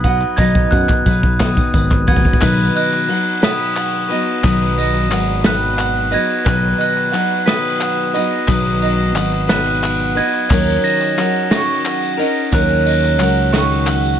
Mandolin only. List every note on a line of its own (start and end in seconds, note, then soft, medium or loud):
0.00 0.71 F#5 medium
0.00 1.05 B5 medium
0.00 0.72 D#6 medium
0.38 1.73 D#5 medium
0.72 2.07 F#5 medium
1.06 1.72 B5 medium
1.41 2.42 D#6 medium
1.74 2.41 B5 medium
2.08 2.41 F#5 medium
2.42 3.77 B4 loud
2.75 4.09 D#5 medium
3.09 3.76 F#5 medium
3.43 4.78 B5 loud
3.77 5.09 F#5 medium
4.10 4.77 D#5 medium
4.44 5.79 B4 medium
4.78 6.10 D#5 medium
5.10 5.76 F#5 medium
5.45 6.80 B5 medium
5.77 7.11 F#5 medium
6.12 6.77 D#5 medium
6.45 7.80 B4 loud
6.78 8.13 D#5 medium
7.12 7.79 F#5 medium
7.46 8.81 B5 medium
7.80 9.14 F#5 medium
8.14 8.81 D#5 medium
8.48 9.83 B4 loud
8.82 10.15 D#5 medium
9.15 9.81 F#5 medium
9.49 10.50 B5 medium
9.82 10.50 F#5 medium
10.16 10.50 D#5 medium
10.49 11.84 C#5 loud
10.84 12.18 D#5 medium
11.18 11.84 F#5 medium
11.51 12.86 C#6 medium
11.85 13.19 F#5 medium
12.19 12.85 D#5 medium
12.52 13.87 C#5 loud
12.86 14.19 D#5 medium
13.20 13.86 F#5 medium
13.53 14.20 C#6 medium
13.87 14.20 F#5 medium